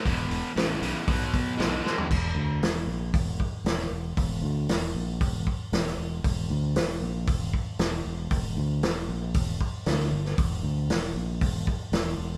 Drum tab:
CC |----------------|x---------------|----------------|----------------|
HH |o-o-o-o-o-o-o---|----o---o---o---|o---o---o---o---|o---o---o---o---|
SD |----o-------o-o-|----o-------oo--|----o-------oo--|----o-------o---|
FT |---------------o|----------------|----------------|----------------|
BD |o-------o-o-----|o-------o-o-----|o-------o-o-----|o-------o-o-----|

CC |----------------|----------------|
HH |o---o---o---o---|o---o---o---o---|
SD |----o-------oo-o|----o-------o---|
FT |----------------|----------------|
BD |o-------o-o-----|o-------o-o-----|